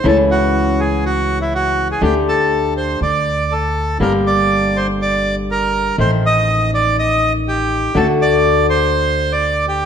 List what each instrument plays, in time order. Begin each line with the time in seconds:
0.04 upright bass C#2, nylon-string guitar C#3 E3 A3 C#4 E4, bandoneon A4
0.31 bandoneon F#4
0.80 bandoneon G#4
1.05 bandoneon F#4
1.42 bandoneon E4
1.55 bandoneon F#4
1.92 bandoneon G#4
2.01 upright bass D2, nylon-string guitar D3 A3 D4 G4, bandoneon G4
2.28 bandoneon A4
2.77 bandoneon C5
3.01 upright bass D2, bandoneon D5
3.52 bandoneon A4
4.00 upright bass G1, nylon-string guitar D3 G3 A#3 D4 G4, bandoneon A#4
4.27 bandoneon D5
4.76 bandoneon C5
5.02 bandoneon D5
5.51 bandoneon A#4
5.98 upright bass A1, nylon-string guitar D#3 A3 C4, bandoneon C5
6.26 bandoneon D#5
6.74 bandoneon D5
6.99 bandoneon D#5
7.48 bandoneon G4
7.95 upright bass D2, nylon-string guitar D3 A3 D4 F#4, bandoneon A4
8.21 bandoneon D5
8.70 bandoneon C5
9.32 bandoneon D5
9.68 bandoneon G4